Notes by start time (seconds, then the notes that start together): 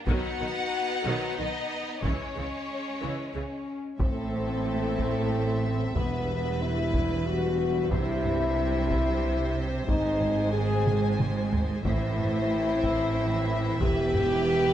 0.07 B1 B2 D#3 F#3 B3 D#4 F#4 F#5, taiko
0.39 B1 B2 D#3
1.05 B1 B2 D#3 F#3
1.38 B1 B2 D#3 D#4 D#5
2.03 C#2 C#3 E3 G#3 C#4 C#5, taiko
2.36 C#2 C#3 E3
3.01 C#2 C#3 E3
3.34 C#2 C#3 E3 C#4
3.99 A1 A2 A3 C4 A4 E5, taiko
4.98 taiko
5.94 E1 E2 G2 G3 B3 B4, taiko
6.62 E4
6.94 taiko
7.27 F#4
7.90 C2 C3 C4 E4 C5 E5, taiko
8.25 taiko low-mid
8.91 taiko
9.88 G#1 G#2 G#3 D#4 G#5, taiko
10.21 taiko low-mid
10.53 G#4
10.86 taiko mid
11.19 taiko mid
11.52 taiko low
11.84 A1 A2 E3 C4 E4 C5 E5, taiko
12.18 taiko low-mid
12.83 taiko
13.81 E1 E2 B3 G4 B4, taiko
14.14 taiko low-mid